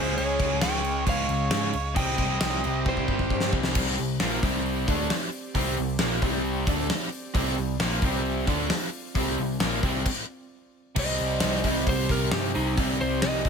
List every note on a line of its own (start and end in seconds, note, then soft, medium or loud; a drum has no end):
0.00 0.15 C#2 loud
0.00 0.60 C#3 medium
0.00 0.61 G#3 medium
0.00 0.62 C#4 loud
0.00 1.95 C#4 medium
0.00 0.16 G#4 medium
0.00 1.94 G#4 medium
0.00 0.17 C5 medium
0.00 1.95 D#5 medium
0.17 0.38 C#2 loud
0.17 0.59 G#4 medium
0.17 0.63 C#5 loud
0.17 crash medium
0.40 0.60 C#2 medium
0.40 kick medium
0.40 crash medium
0.61 1.03 C#2 loud
0.61 1.72 C#3 medium
0.61 1.73 G#3 medium
0.61 1.73 C#4 medium
0.61 1.04 C#5 medium
0.61 1.04 G5 loud
0.61 snare loud
0.61 crash medium
0.84 crash medium
1.07 1.27 C#2 loud
1.07 1.93 C#5 medium
1.07 1.96 F5 medium
1.07 kick loud
1.07 crash medium
1.29 1.49 C#2 loud
1.29 crash medium
1.50 1.72 G#2 loud
1.50 1.72 C#3 medium
1.50 1.72 G#3 medium
1.50 1.73 C#4 loud
1.50 snare loud
1.50 crash medium
1.73 1.94 C#2 loud
1.73 crash medium
1.95 2.17 C2 loud
1.95 2.61 C3 loud
1.95 2.62 G3 medium
1.95 3.74 C4 medium
1.95 2.63 C4 loud
1.95 3.74 G4 medium
1.95 3.74 C5 medium
1.95 2.81 D#5 medium
1.95 2.82 G5 loud
1.95 kick loud
1.95 crash medium
2.18 2.39 C2 medium
2.18 kick medium
2.18 crash medium
2.40 2.61 C2 medium
2.40 snare loud
2.40 crash medium
2.64 2.84 C2 medium
2.64 3.75 C3 medium
2.64 3.75 G3 medium
2.64 3.74 C4 loud
2.64 crash medium
2.86 3.06 C2 loud
2.86 3.49 G4 medium
2.86 3.50 C5 medium
2.86 kick loud
2.97 kick medium
3.08 3.29 G1 medium
3.08 kick medium
3.19 kick medium
3.30 3.51 G2 medium
3.30 kick medium
3.40 snare medium
3.52 3.73 C2 medium
3.52 3.73 C3 medium
3.52 3.74 G3 medium
3.52 3.73 C4 medium
3.52 kick loud
3.63 snare loud
3.75 3.96 C2 loud
3.75 3.96 C3 medium
3.75 3.97 G3 loud
3.75 3.98 C4 loud
3.75 10.03 C4 medium
3.75 7.32 G4 medium
3.75 10.03 D5 medium
3.75 kick loud
3.75 crash loud
3.98 4.20 C2 medium
3.98 4.16 C3 medium
3.98 4.16 G3 medium
3.98 open hi-hat medium
4.20 4.42 A#1 loud
4.20 4.43 A#2 medium
4.20 4.43 F3 medium
4.20 4.43 A#3 loud
4.20 snare loud
4.20 open hi-hat medium
4.43 4.85 C2 medium
4.43 4.87 C3 medium
4.43 4.88 G3 loud
4.43 4.88 C4 loud
4.43 kick loud
4.43 open hi-hat medium
4.66 open hi-hat medium
4.88 5.09 D2 loud
4.88 5.10 D3 loud
4.88 5.10 A3 loud
4.88 5.10 D4 loud
4.88 kick loud
4.88 open hi-hat medium
5.10 snare loud
5.10 open hi-hat medium
5.32 open hi-hat medium
5.55 5.76 C2 loud
5.55 5.76 C3 medium
5.55 5.77 G3 medium
5.55 5.77 C4 loud
5.55 kick loud
5.55 open hi-hat medium
5.77 5.99 C2 medium
5.77 5.96 C3 medium
5.77 5.96 G3 medium
5.77 open hi-hat medium
5.99 6.22 A#1 loud
5.99 6.22 A#2 loud
5.99 6.22 F3 loud
5.99 6.22 A#3 loud
5.99 snare loud
5.99 open hi-hat medium
6.22 6.64 C2 medium
6.22 6.67 C3 loud
6.22 6.67 G3 loud
6.22 6.67 C4 loud
6.22 kick loud
6.22 open hi-hat medium
6.44 open hi-hat medium
6.67 6.89 D2 medium
6.67 6.89 D3 medium
6.67 6.90 A3 loud
6.67 6.90 D4 loud
6.67 kick loud
6.67 open hi-hat medium
6.90 snare loud
6.90 open hi-hat medium
7.12 open hi-hat medium
7.34 7.56 C2 loud
7.34 7.56 C3 medium
7.34 7.56 G3 loud
7.34 7.57 C4 loud
7.34 10.03 F4 medium
7.34 kick loud
7.34 open hi-hat medium
7.57 7.79 C2 medium
7.57 7.75 C3 medium
7.57 7.76 G3 medium
7.57 open hi-hat medium
7.80 8.01 A#1 loud
7.80 8.03 A#2 medium
7.80 8.03 F3 loud
7.80 8.03 A#3 loud
7.80 snare loud
7.80 open hi-hat medium
8.02 8.45 C2 loud
8.02 8.47 C3 medium
8.02 8.47 G3 loud
8.02 8.48 C4 loud
8.02 kick loud
8.02 open hi-hat medium
8.25 open hi-hat medium
8.47 8.69 D2 loud
8.47 8.70 D3 loud
8.47 8.70 A3 loud
8.47 8.70 D4 loud
8.47 kick loud
8.47 open hi-hat medium
8.70 snare loud
8.70 open hi-hat medium
8.93 open hi-hat medium
9.15 9.36 C2 loud
9.15 9.38 C3 loud
9.15 9.38 G3 loud
9.15 9.39 C4 loud
9.15 kick loud
9.15 open hi-hat medium
9.38 9.60 C2 medium
9.38 9.57 C3 medium
9.38 9.58 G3 medium
9.38 open hi-hat medium
9.60 9.82 A#1 loud
9.60 9.83 A#2 loud
9.60 9.83 F3 loud
9.60 9.84 A#3 loud
9.60 snare loud
9.60 open hi-hat medium
9.83 10.04 C2 medium
9.83 10.06 C3 loud
9.83 10.06 G3 medium
9.83 10.06 C4 loud
9.83 kick loud
9.83 open hi-hat medium
10.06 kick loud
10.06 crash loud
10.96 11.17 C2 loud
10.96 11.65 C3 loud
10.96 11.64 G3 loud
10.96 13.49 C4 medium
10.96 11.63 C4 loud
10.96 13.49 G4 medium
10.96 12.76 C5 medium
10.96 11.86 D#5 loud
10.96 kick loud
10.96 crash loud
11.18 11.40 C2 medium
11.18 open hi-hat medium
11.40 11.83 C2 loud
11.40 snare loud
11.40 open hi-hat loud
11.63 12.75 C3 medium
11.63 12.76 G3 medium
11.63 12.78 C4 medium
11.63 kick medium
11.63 open hi-hat medium
11.87 12.08 C2 loud
11.87 12.10 C5 loud
11.87 kick loud
11.87 open hi-hat medium
12.08 12.30 C2 medium
12.08 12.32 A#4 medium
12.08 kick medium
12.08 open hi-hat medium
12.31 12.53 G2 loud
12.31 12.55 G4 medium
12.31 snare loud
12.31 open hi-hat loud
12.54 12.76 C2 medium
12.54 12.76 C3 medium
12.54 12.77 G3 medium
12.54 12.80 C4 loud
12.54 12.77 D#4 loud
12.54 open hi-hat medium
12.76 12.98 C2 loud
12.76 13.43 C3 medium
12.76 13.44 G3 loud
12.76 13.43 C4 loud
12.76 13.49 A#4 medium
12.76 kick loud
12.76 open hi-hat medium
13.01 13.21 C2 medium
13.01 13.22 C5 loud
13.01 open hi-hat medium
13.22 13.43 C2 loud
13.22 13.49 D#5 loud
13.22 snare loud
13.22 open hi-hat medium
13.44 13.49 C2 loud
13.44 13.49 G3 medium
13.44 13.49 C4 medium
13.44 kick loud
13.44 open hi-hat medium